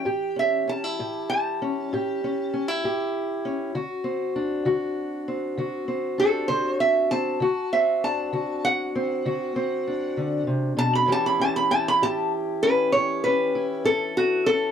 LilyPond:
<<
  \new Staff \with { instrumentName = "Resonator guitar played with a steel bar" } { \time 12/8 \key d \major \tempo 4. = 65 g''8 e''8 a''4 a''2. r4 | r1 a'8 c''8 e''8 a''8~ | a''8 e''8 a''4 fis''2. r8 a''16 b''16 | a''16 b''16 a''16 b''16 a''16 b''16 a''8 r8 b'8 cis''8 b'4 a'8 fis'8 a'8 | }
  \new Staff \with { instrumentName = "Steel-string acoustic guitar" } { \time 12/8 \key d \major << { <e g'>8 cis'8 cis'16 e'16 g'4 cis'8 g'8 cis'8 cis'16 e'16 g'4 cis'8 | fis'8 c'8 d'8 fis'4 c'8 fis'8 c'8 d'8 fis'4 c'8 | fis'8 c'8 d'8 fis'4 c'8 fis'8 c'8 d'2 | <e cis' e' g'>8 cis'8 e'8 g'4 cis'8 g'8 cis'8 e'4. cis'8 | } \\ { a,4 r8 a,4 r8 a,4 r8 a,4 r8 | d4 r8 d4 r8 d4 r8 d4 r8 | d4 r8 d4 r8 d4 r8 d8 c8 b,8 | a,4 r8 a,4 r8 a,4 r8 a,4 r8 | } >> }
>>